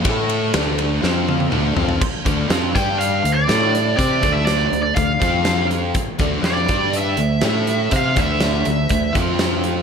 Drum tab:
CC |----------------|x---------------|----------------|----------------|
RD |x-x-x-x---------|----------------|----------------|----------------|
HH |----------------|--x-x-x-x-x-x-x-|x-x-x-x-x-x-x-x-|x-x-x-x-x-x-x-x-|
SD |----o---o-------|----o-------o---|----o-------o---|----o-------o---|
T1 |----------oo----|----------------|----------------|----------------|
T2 |------------o---|----------------|----------------|----------------|
FT |--------------oo|----------------|----------------|----------------|
BD |o---------------|o-o---o---------|o-o-----o-o-----|o-o---o---------|

CC |----------------|
RD |----------------|
HH |x-x-x-x-x-x-x-x-|
SD |----o-------o---|
T1 |----------------|
T2 |----------------|
FT |----------------|
BD |o-o-----o-o-----|